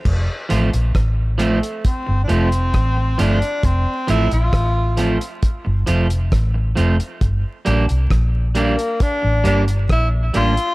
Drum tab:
CC |x---------------|----------------|----------------|
HH |--xxx-xxx-xxx-xx|x-xxx-xxx-xxx-xx|x-xxx-xxx-xxx-xx|
SD |----r-------r---|----r-------r---|----r-------r---|
BD |o---o---o---o---|o---o---o---o---|o---o---o---o---|